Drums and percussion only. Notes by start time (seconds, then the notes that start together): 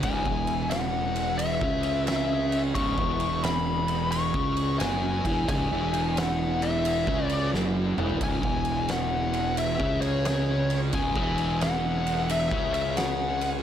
0.03 kick, ride
0.26 kick
0.47 ride
0.71 snare, ride
1.16 ride
1.39 ride
1.61 kick
1.83 ride
2.07 snare, ride
2.52 ride
2.75 kick, ride
2.98 kick
3.20 ride
3.44 snare, ride
3.88 ride
4.12 ride
4.34 kick
4.57 ride
4.80 snare, ride
5.25 kick, ride
5.49 kick, ride
5.94 ride
6.17 snare, ride
6.62 ride
6.85 ride
7.07 kick
7.29 ride
7.54 snare
7.98 mid tom
8.09 floor tom
8.21 kick, ride
8.43 kick
8.65 ride
8.89 snare, ride
9.34 ride
9.57 ride
9.80 kick
10.02 ride
10.25 snare, ride
10.70 ride
10.93 kick, ride
11.16 kick
11.38 ride
11.61 snare, ride
12.07 ride
12.29 ride
12.51 kick
12.74 ride
12.97 snare, ride
13.41 ride